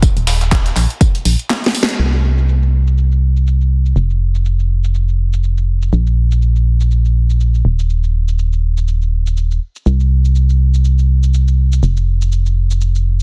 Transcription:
0.00 0.11 D#1 medium
0.00 kick loud
0.00 closed hi-hat medium
0.00 tambourine medium
0.17 0.72 D#1 medium
0.17 closed hi-hat soft
0.27 snare loud
0.27 open hi-hat loud
0.27 tambourine medium
0.41 snare soft
0.41 closed hi-hat soft
0.52 kick loud
0.52 snare loud
0.52 clap loud
0.52 closed hi-hat medium
0.52 tambourine medium
0.66 snare soft
0.66 closed hi-hat medium
0.76 0.87 A#1 medium
0.76 clap soft
0.76 open hi-hat loud
0.76 tambourine medium
0.90 closed hi-hat soft
1.01 kick loud
1.01 closed hi-hat medium
1.01 tambourine medium
1.15 closed hi-hat soft
1.25 1.36 A#1 medium
1.25 open hi-hat loud
1.39 closed hi-hat soft
1.50 snare medium
1.50 snare loud
1.50 clap loud
1.50 closed hi-hat medium
1.50 tambourine medium
1.64 snare medium
1.64 closed hi-hat soft
1.75 open hi-hat loud
1.75 tambourine medium
1.83 snare loud
1.89 closed hi-hat medium
1.89 closed hi-hat soft
1.99 3.94 C2 medium
1.99 shaker soft
2.13 shaker soft
2.38 shaker medium
2.48 shaker medium
2.63 shaker soft
2.87 shaker medium
2.98 shaker soft
3.12 shaker soft
3.36 shaker medium
3.47 shaker medium
3.61 shaker soft
3.86 shaker medium
3.96 5.91 F1 medium
3.96 shaker soft
4.10 shaker soft
4.35 shaker medium
4.45 shaker medium
4.59 shaker soft
4.84 shaker medium
4.94 shaker soft
5.08 shaker soft
5.33 shaker medium
5.43 shaker medium
5.58 shaker soft
5.82 shaker medium
5.93 7.63 A#1 medium
5.93 shaker soft
6.07 shaker soft
6.31 shaker medium
6.42 shaker soft
6.56 shaker soft
6.80 shaker medium
6.91 shaker soft
7.05 shaker soft
7.30 shaker medium
7.40 shaker medium
7.54 shaker soft
7.65 9.59 D#1 medium
7.79 shaker medium
7.90 shaker soft
8.04 shaker soft
8.28 shaker medium
8.39 shaker medium
8.53 shaker soft
8.77 shaker medium
8.88 shaker soft
9.02 shaker soft
9.26 shaker medium
9.37 shaker medium
9.51 shaker soft
9.76 shaker medium
9.86 11.81 C2 medium
9.86 shaker medium
10.00 shaker soft
10.25 shaker medium
10.35 shaker medium
10.49 shaker soft
10.74 shaker medium
10.85 shaker soft
10.99 shaker soft
11.23 shaker medium
11.34 shaker medium
11.48 shaker soft
11.72 shaker medium
11.83 13.23 F1 medium
11.83 shaker medium
11.97 shaker soft
12.22 shaker medium
12.32 shaker medium
12.46 shaker soft
12.71 shaker medium
12.81 shaker medium
12.95 shaker soft

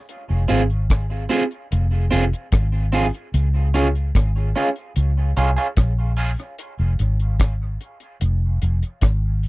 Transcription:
0.09 closed hi-hat medium
0.30 0.48 F1 medium
0.48 1.27 G#1 medium
0.48 0.61 C4 medium
0.48 0.61 F4 medium
0.48 0.62 G#4 medium
0.48 closed hi-hat medium
0.70 closed hi-hat soft
0.90 kick loud
0.90 cross-stick loud
0.90 closed hi-hat loud
1.29 1.42 C4 medium
1.29 1.42 F4 medium
1.29 1.43 G#4 medium
1.29 closed hi-hat medium
1.51 closed hi-hat soft
1.72 2.09 F1 loud
1.72 closed hi-hat medium
2.11 2.31 F1 medium
2.11 2.23 C4 medium
2.11 2.24 F4 medium
2.11 2.24 G#4 medium
2.11 closed hi-hat medium
2.33 closed hi-hat medium
2.52 3.10 G#1 medium
2.52 kick loud
2.52 cross-stick loud
2.52 closed hi-hat medium
2.93 3.05 C4 medium
2.93 3.05 F4 medium
2.93 3.06 G#4 medium
2.93 open hi-hat medium
3.14 closed hi-hat medium
3.34 4.11 C#2 loud
3.34 closed hi-hat medium
3.74 3.86 C#4 medium
3.74 3.87 F4 medium
3.74 3.87 G#4 medium
3.74 closed hi-hat medium
3.95 closed hi-hat soft
4.15 4.53 G#1 medium
4.15 kick loud
4.15 cross-stick loud
4.15 closed hi-hat loud
4.56 4.68 C#4 medium
4.56 4.68 F4 medium
4.56 4.68 G#4 loud
4.56 closed hi-hat medium
4.76 closed hi-hat soft
4.96 5.34 C#2 medium
4.96 closed hi-hat medium
5.37 5.56 C2 medium
5.37 5.49 C#4 medium
5.37 5.49 F4 medium
5.37 5.49 G#4 medium
5.37 closed hi-hat medium
5.56 5.67 C#4 soft
5.56 5.67 F4 medium
5.56 5.66 G#4 medium
5.56 closed hi-hat medium
5.77 6.35 A#1 medium
5.77 kick loud
5.77 cross-stick loud
5.77 closed hi-hat medium
6.17 6.29 C#4 medium
6.17 6.30 F4 medium
6.17 6.30 G#4 medium
6.17 open hi-hat medium
6.39 closed hi-hat soft
6.58 closed hi-hat medium
6.79 6.98 F1 medium
6.99 7.77 G#1 medium
6.99 closed hi-hat medium
7.20 closed hi-hat soft
7.40 kick medium
7.40 cross-stick loud
7.40 closed hi-hat loud
7.81 closed hi-hat medium
8.00 closed hi-hat soft
8.21 8.59 F1 medium
8.21 closed hi-hat medium
8.62 8.81 F1 medium
8.62 closed hi-hat medium
8.82 closed hi-hat soft
9.01 9.48 G#1 medium
9.01 kick medium
9.01 cross-stick loud
9.01 closed hi-hat medium
9.43 open hi-hat medium

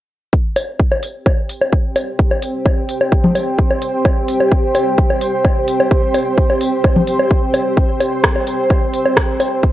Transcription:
0.33 9.72 C4 medium
0.33 kick loud
0.48 9.72 G4 medium
0.56 open hi-hat medium
0.56 low woodblock soft
0.80 kick loud
0.92 low woodblock soft
1.03 9.72 C5 medium
1.03 open hi-hat medium
1.26 kick loud
1.26 low woodblock soft
1.49 open hi-hat medium
1.61 low woodblock soft
1.73 kick loud
1.96 open hi-hat medium
1.96 low woodblock soft
2.19 kick loud
2.31 low woodblock soft
2.42 open hi-hat medium
2.66 kick loud
2.66 low woodblock soft
2.89 open hi-hat medium
3.01 low woodblock soft
3.12 kick loud
3.24 low conga medium
3.35 open hi-hat medium
3.35 low woodblock soft
3.59 kick loud
3.71 low woodblock soft
3.82 open hi-hat medium
4.05 kick loud
4.05 low woodblock soft
4.28 open hi-hat medium
4.40 low woodblock soft
4.52 kick loud
4.75 open hi-hat medium
4.75 low woodblock soft
4.98 kick loud
5.10 low woodblock soft
5.21 open hi-hat medium
5.45 kick loud
5.45 low woodblock soft
5.68 open hi-hat medium
5.80 low woodblock soft
5.91 kick loud
6.14 open hi-hat medium
6.14 low woodblock soft
6.38 kick loud
6.50 low woodblock soft
6.61 open hi-hat medium
6.84 kick loud
6.84 low woodblock soft
6.96 low conga medium
7.07 open hi-hat medium
7.19 low woodblock soft
7.31 kick loud
7.54 open hi-hat medium
7.54 low woodblock soft
7.77 kick loud
8.00 open hi-hat medium
8.00 low woodblock soft
8.24 kick loud
8.24 cross-stick medium
8.36 low woodblock soft
8.47 open hi-hat medium
8.70 kick loud
8.70 low woodblock soft
8.94 open hi-hat medium
9.06 low woodblock soft
9.17 kick loud
9.17 cross-stick medium
9.40 open hi-hat medium
9.40 low woodblock soft
9.63 kick loud

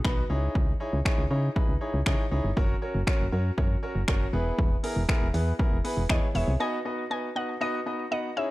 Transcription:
0.04 0.24 B1 loud
0.04 0.22 B3 loud
0.04 0.22 D#4 loud
0.04 0.22 F#4 loud
0.04 0.22 B4 loud
0.04 finger snap loud
0.04 kick loud
0.30 0.49 C#2 medium
0.30 0.70 D#4 medium
0.30 0.70 E4 medium
0.30 0.70 G#4 medium
0.30 0.70 C#5 loud
0.55 0.74 C#2 loud
0.55 kick loud
0.80 0.97 D#4 medium
0.80 0.97 E4 medium
0.80 0.97 G#4 medium
0.80 0.97 C#5 loud
0.93 1.02 C#2 loud
1.05 1.22 D#4 loud
1.05 1.23 E4 loud
1.05 1.23 G#4 loud
1.05 1.23 C#5 loud
1.05 finger snap loud
1.05 kick loud
1.18 1.28 C#2 loud
1.30 1.50 C#3 medium
1.30 1.48 D#4 medium
1.30 1.48 E4 medium
1.30 1.48 G#4 medium
1.30 1.48 C#5 loud
1.56 1.73 D#4 medium
1.56 1.73 E4 medium
1.56 1.73 G#4 medium
1.56 1.73 B4 loud
1.56 kick loud
1.69 1.78 C#2 medium
1.81 1.98 D#4 medium
1.81 1.98 E4 medium
1.81 1.98 G#4 medium
1.81 1.98 C#5 medium
1.94 2.03 C#2 medium
2.06 2.16 C#3 loud
2.06 2.23 D#4 loud
2.06 2.23 E4 loud
2.06 2.23 G#4 loud
2.06 2.23 C#5 loud
2.06 finger snap loud
2.06 kick loud
2.31 2.41 C#2 medium
2.31 2.48 D#4 medium
2.31 2.49 E4 medium
2.31 2.49 G#4 medium
2.31 2.49 C#5 loud
2.44 2.54 G1 medium
2.56 2.76 F#1 loud
2.56 2.74 C#4 loud
2.56 2.74 F#4 loud
2.56 2.74 A#4 loud
2.56 2.74 C#5 loud
2.56 kick loud
2.82 2.99 C#4 medium
2.82 2.99 F#4 medium
2.82 2.99 A#4 medium
2.82 2.99 C#5 loud
2.95 3.04 F#1 loud
3.07 3.24 C#4 loud
3.07 3.24 F#4 loud
3.07 3.24 A#4 loud
3.07 3.24 C#5 loud
3.07 finger snap loud
3.07 kick loud
3.20 3.29 F#1 loud
3.32 3.51 F#2 loud
3.32 3.49 C#4 medium
3.32 3.49 F#4 medium
3.32 3.49 A#4 medium
3.32 3.50 C#5 loud
3.57 3.77 F#2 loud
3.57 3.75 C#4 medium
3.57 3.75 F#4 medium
3.57 3.75 A#4 medium
3.57 3.75 C#5 loud
3.57 kick loud
3.83 4.00 C#4 medium
3.83 4.00 F#4 medium
3.83 4.00 A#4 medium
3.83 4.00 C#5 loud
3.95 4.05 F#1 medium
4.08 4.27 F#1 loud
4.08 4.25 C#4 loud
4.08 4.25 F#4 loud
4.08 4.25 A#4 loud
4.08 4.25 C#5 loud
4.08 finger snap loud
4.08 kick loud
4.33 4.52 E1 loud
4.33 4.73 B3 medium
4.33 4.74 E4 medium
4.33 4.74 G#4 medium
4.33 4.74 B4 loud
4.59 4.77 E1 loud
4.59 kick loud
4.83 5.01 B3 medium
4.83 5.01 E4 medium
4.83 5.01 G#4 medium
4.83 5.01 A#4 loud
4.83 open hi-hat medium
4.96 5.06 E1 loud
5.09 5.26 B3 loud
5.09 5.26 E4 loud
5.09 5.26 G#4 loud
5.09 5.26 A#4 loud
5.09 finger snap loud
5.09 kick loud
5.22 5.31 E1 loud
5.34 5.53 E2 loud
5.34 5.51 B3 medium
5.34 5.51 E4 medium
5.34 5.51 G#4 medium
5.34 5.51 B4 loud
5.34 open hi-hat medium
5.59 5.76 B3 medium
5.59 5.76 E4 medium
5.59 5.76 G#4 medium
5.59 5.76 A#4 medium
5.59 kick loud
5.72 5.81 E1 medium
5.84 6.01 B3 medium
5.84 6.01 E4 medium
5.84 6.02 G#4 medium
5.84 6.02 B4 loud
5.84 open hi-hat medium
5.97 6.07 E1 medium
6.09 6.19 E2 loud
6.09 6.27 B3 loud
6.09 6.27 E4 loud
6.09 6.27 G#4 loud
6.09 6.27 C#5 loud
6.09 6.33 D#5 medium
6.09 finger snap loud
6.09 kick loud
6.35 6.44 E1 medium
6.35 6.52 B3 medium
6.35 6.52 E4 medium
6.35 6.52 G#4 medium
6.35 6.52 C#5 loud
6.35 6.61 E5 medium
6.35 open hi-hat medium
6.48 6.57 C2 medium
6.60 6.77 B3 loud
6.60 6.77 D#4 medium
6.60 6.77 F#4 medium
6.60 6.77 B4 medium
6.60 6.77 D#5 loud
6.60 7.10 G#5 loud
6.85 7.02 B3 medium
6.85 7.02 D#4 medium
6.85 7.02 F#4 medium
6.85 7.02 B4 medium
6.85 7.02 D#5 medium
7.10 7.27 B3 medium
7.10 7.28 D#4 medium
7.10 7.28 F#4 medium
7.10 7.28 B4 medium
7.10 7.28 D#5 medium
7.10 7.34 G#5 medium
7.36 7.53 B3 medium
7.36 7.53 D#4 medium
7.36 7.53 F#4 medium
7.36 7.53 B4 medium
7.36 7.53 D#5 medium
7.36 7.62 F#5 medium
7.61 7.78 B3 loud
7.61 7.78 D#4 medium
7.61 7.78 F#4 medium
7.61 7.78 B4 medium
7.61 7.78 D#5 loud
7.61 8.11 D#5 medium
7.86 8.03 B3 medium
7.86 8.03 D#4 medium
7.86 8.03 F#4 medium
7.86 8.03 B4 medium
7.86 8.03 D#5 medium
8.11 8.28 B3 medium
8.11 8.28 D#4 medium
8.11 8.28 F#4 medium
8.11 8.28 B4 medium
8.11 8.38 D#5 medium
8.11 8.29 F#5 medium
8.36 8.51 C#4 medium
8.36 8.51 D#4 medium
8.36 8.51 E4 medium
8.36 8.51 G#4 medium
8.36 8.51 C#5 medium
8.36 8.51 E5 medium

